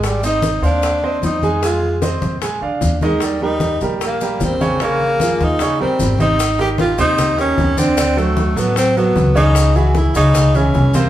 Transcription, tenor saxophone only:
0.05 G3
0.26 D#4
0.65 D4
1.25 D#4
1.65 F4
3.04 G#3
3.23 G3
3.44 D#4
4.06 A#3
4.44 C4
4.83 A#3
5.44 D#4
5.81 C4
6.21 D#4
6.61 G4
6.81 F4
7.00 D#4
7.40 C#4
7.79 C4
8.19 A3
8.59 B3
8.78 C4
8.98 B3
9.37 D#4
9.77 F#4
9.97 E4
10.17 D#4
10.56 C#4
10.96 A#3

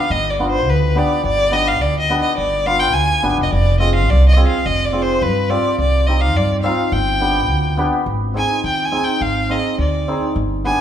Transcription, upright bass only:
0.10 G1
0.67 D2
1.24 G1
1.81 D2
2.38 G1
2.95 D2
3.24 G1
3.38 F1
3.53 F1
4.09 C2
4.66 F1
5.22 G2
5.79 C2
6.36 G2
6.92 G1
7.50 D2
8.06 G#1
8.64 D#2
9.21 G#1
9.78 D2
10.36 G1

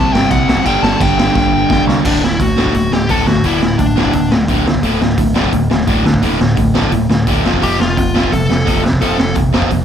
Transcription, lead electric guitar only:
Already playing: A5
0.13 G5
0.32 F#5
0.66 G5
0.83 A5
1.02 G5
2.07 D4
2.24 E4
2.41 F#4
2.75 F#4
2.93 G4
3.10 A4
3.27 F#4
3.45 E4
3.79 D4
7.63 G4
7.81 F4
8.32 A4
9.02 A4

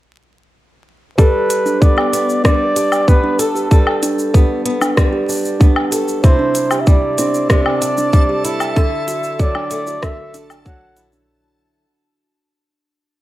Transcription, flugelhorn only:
1.18 B4
1.81 D5
2.44 D5
3.08 B4
3.40 A4
6.23 C5
6.80 E5
6.87 D5
7.51 D5
8.45 E5
9.40 D5
10.03 E5
10.67 F#5

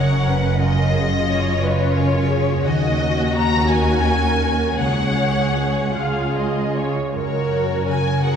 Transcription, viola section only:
Already playing: C#5
0.29 B4
0.61 A#4
0.94 G#4
1.29 C#5
1.62 B4
1.95 A#4
2.29 G#4
2.65 F#4
3.68 A#4
4.78 C#5
5.95 F5
6.36 D#5
6.76 C#5
7.15 A#4
8.22 G#4

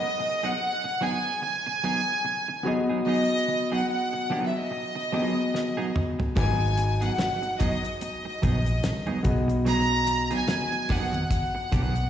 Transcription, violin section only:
Already playing: D#5
0.44 F#5
1.02 G#5
1.43 G#5
3.08 D#5
3.73 F#5
3.91 F#5
4.48 E5
4.56 D#5
6.38 G#5
7.03 F#5
7.62 D#5
8.03 D#5
9.68 A#5
10.33 G#5
10.92 F#5
11.33 F#5

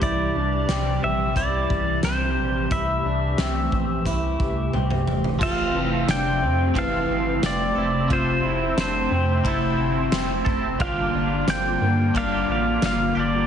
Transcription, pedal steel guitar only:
0.03 D5
1.04 E5
1.37 D5
2.05 C5
2.72 E5
5.43 F5
6.11 G5
6.78 F5
7.46 D5
8.13 C5
8.81 C5
10.81 F5
11.50 G5
12.17 F5
12.52 F5
12.86 F5
13.19 D5

